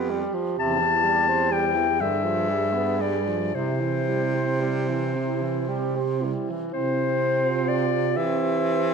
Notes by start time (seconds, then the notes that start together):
Already playing: F2 B3 G4
0.10 G3
0.34 F3
0.58 E2 C3 A5
0.79 E3
1.04 G3
1.28 C4
1.51 G3 G5
1.75 E3
1.99 G2 D3 G#4 E5
2.24 F3
2.49 G3
2.73 B3
3.00 G3 D5
3.27 F3
3.54 C3 E4 C5
3.80 E3
4.09 G3
4.35 C4
4.61 G3
4.89 E3
5.16 C3 E4
5.42 E3
5.68 G3 G4
5.96 C4
6.21 G3 E4
6.50 E3
6.71 C3 C4 E4 C5
7.45 F4
7.69 D5
8.17 E3 C4 G4 E5